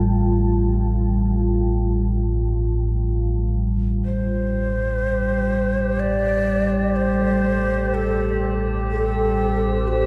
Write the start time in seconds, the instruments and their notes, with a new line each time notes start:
Already playing: synth drone A1 A2, ambient pad G3 F4 C5 G5 A5
4.03 synth drone A1 A2 G4, ambient pad G3, shakuhachi C5
5.40 ambient pad E4
5.75 ambient pad A4
6.00 shakuhachi D5
6.96 shakuhachi C5
7.94 shakuhachi A4
8.60 ambient pad C5
8.91 shakuhachi A4
9.87 shakuhachi G4